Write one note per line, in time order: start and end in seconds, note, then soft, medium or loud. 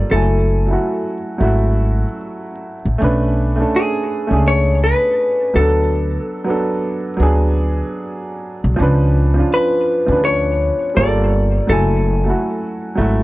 0.00 0.14 G3 medium
0.00 0.12 A#3 medium
0.00 0.13 F4 medium
0.00 0.12 A4 medium
0.00 0.14 D5 loud
0.10 0.73 F#1 loud
0.10 0.46 F#3 medium
0.10 0.47 A3 medium
0.10 0.48 E4 medium
0.10 2.60 A4 medium
0.16 0.49 G#5 medium
0.67 1.13 F#3 medium
0.67 1.14 A3 medium
0.67 1.15 E4 medium
0.73 1.16 F#4 medium
1.38 2.02 G#1 medium
1.38 2.32 F#3 medium
1.38 2.33 A3 medium
1.38 2.34 E4 medium
1.44 2.35 F#4 medium
2.85 2.99 A1 medium
2.98 3.63 B1 medium
2.98 3.35 A3 medium
2.98 3.36 C#4 medium
2.98 3.37 D4 medium
3.04 3.38 B4 medium
3.56 4.02 A3 medium
3.56 4.03 C#4 medium
3.56 4.04 D4 medium
3.62 4.05 A4 medium
3.76 4.43 G#4 medium
4.27 4.92 C#2 medium
4.27 5.21 A3 medium
4.27 5.22 C#4 medium
4.27 5.23 D4 medium
4.33 5.24 G#4 medium
4.48 4.80 C#5 loud
4.84 5.57 B4 loud
5.54 6.16 D2 loud
5.54 6.26 F#3 medium
5.54 6.27 B3 medium
5.54 6.28 D4 medium
5.54 6.95 A4 medium
5.59 6.29 A4 medium
6.44 6.91 F#3 medium
6.44 6.92 B3 medium
6.44 6.93 D4 medium
6.50 6.94 A4 medium
7.17 7.81 D2 medium
7.17 8.11 F#3 medium
7.17 8.12 B3 medium
7.17 8.13 D4 medium
7.22 8.14 G#4 medium
8.64 8.77 B1 medium
8.76 9.41 C#2 medium
8.76 9.13 F3 medium
8.76 9.14 C#4 medium
8.76 9.15 D4 medium
8.82 9.16 B4 medium
9.34 9.81 F3 medium
9.34 9.82 C#4 medium
9.34 9.83 D4 medium
9.40 9.84 F4 medium
9.54 10.24 B4 loud
10.07 10.69 D2 medium
10.07 10.95 F3 medium
10.07 10.96 C#4 medium
10.07 10.97 D4 medium
10.12 10.98 B4 medium
10.25 10.92 C#5 loud
10.94 11.58 G1 loud
10.94 11.54 G3 medium
10.94 11.55 A#3 medium
10.94 11.56 F4 medium
10.94 11.70 D5 loud
11.00 11.05 G#4 medium
11.06 11.60 A4 medium
11.67 12.30 F#1 medium
11.67 12.03 F#3 medium
11.67 12.04 A3 medium
11.67 12.05 E4 medium
11.67 13.23 A4 medium
11.73 12.06 G#5 medium
12.24 12.70 F#3 medium
12.24 12.71 A3 medium
12.24 12.72 E4 medium
12.30 12.73 F#4 medium
12.95 13.23 G#1 medium
12.95 13.23 F#3 medium
12.95 13.23 A3 medium
12.95 13.23 E4 medium
13.01 13.23 F#4 medium